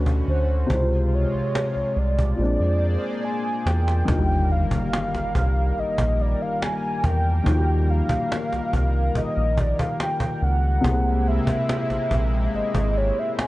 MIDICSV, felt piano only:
0, 0, Header, 1, 2, 480
1, 0, Start_track
1, 0, Key_signature, -3, "major"
1, 0, Tempo, 845070
1, 400, Time_signature, 4, 2, 24, 8
1, 7653, End_track
2, 0, Start_track
2, 0, Title_t, "Felt piano"
2, 0, Program_c, 0, 0
2, 0, Note_on_c, 0, 50, 59
2, 0, Note_on_c, 0, 57, 54
2, 0, Note_on_c, 0, 61, 58
2, 0, Note_on_c, 0, 66, 67
2, 42, Control_c, 0, 64, 127
2, 380, Note_on_c, 0, 48, 61
2, 393, Note_on_c, 0, 56, 60
2, 397, Note_off_c, 0, 50, 0
2, 401, Note_off_c, 0, 57, 0
2, 404, Note_off_c, 0, 61, 0
2, 408, Note_off_c, 0, 66, 0
2, 408, Control_c, 0, 64, 0
2, 421, Note_on_c, 0, 64, 54
2, 448, Note_off_c, 0, 64, 0
2, 458, Note_on_c, 0, 65, 71
2, 515, Control_c, 0, 64, 127
2, 1331, Note_off_c, 0, 48, 0
2, 1338, Note_off_c, 0, 56, 0
2, 1342, Note_on_c, 0, 46, 63
2, 1356, Note_on_c, 0, 56, 58
2, 1369, Control_c, 0, 64, 0
2, 1370, Note_on_c, 0, 60, 57
2, 1371, Note_off_c, 0, 65, 0
2, 1383, Note_on_c, 0, 62, 69
2, 1467, Control_c, 0, 64, 127
2, 2292, Note_off_c, 0, 46, 0
2, 2299, Note_off_c, 0, 56, 0
2, 2301, Note_on_c, 0, 51, 68
2, 2306, Note_off_c, 0, 60, 0
2, 2313, Note_off_c, 0, 62, 0
2, 2314, Note_on_c, 0, 50, 58
2, 2329, Control_c, 0, 64, 0
2, 2330, Note_on_c, 0, 65, 60
2, 2343, Note_on_c, 0, 66, 55
2, 2369, Note_off_c, 0, 66, 0
2, 2380, Note_on_c, 0, 55, 75
2, 2432, Control_c, 0, 64, 127
2, 4208, Note_off_c, 0, 51, 0
2, 4215, Note_off_c, 0, 50, 0
2, 4222, Note_off_c, 0, 65, 0
2, 4223, Note_on_c, 0, 51, 65
2, 4235, Note_on_c, 0, 63, 59
2, 4248, Note_off_c, 0, 55, 0
2, 4249, Note_on_c, 0, 53, 60
2, 4264, Note_on_c, 0, 66, 60
2, 4289, Note_off_c, 0, 66, 0
2, 4300, Note_on_c, 0, 67, 68
2, 6129, Note_off_c, 0, 51, 0
2, 6135, Note_off_c, 0, 63, 0
2, 6140, Note_on_c, 0, 48, 68
2, 6142, Note_off_c, 0, 53, 0
2, 6150, Note_on_c, 0, 58, 62
2, 6161, Note_on_c, 0, 60, 64
2, 6167, Control_c, 0, 64, 0
2, 6168, Note_off_c, 0, 67, 0
2, 6170, Note_on_c, 0, 64, 64
2, 6182, Note_on_c, 0, 68, 77
2, 6278, Control_c, 0, 64, 127
2, 7653, Note_off_c, 0, 48, 0
2, 7653, Note_off_c, 0, 58, 0
2, 7653, Note_off_c, 0, 60, 0
2, 7653, Note_off_c, 0, 64, 0
2, 7653, Note_off_c, 0, 68, 0
2, 7653, End_track
0, 0, End_of_file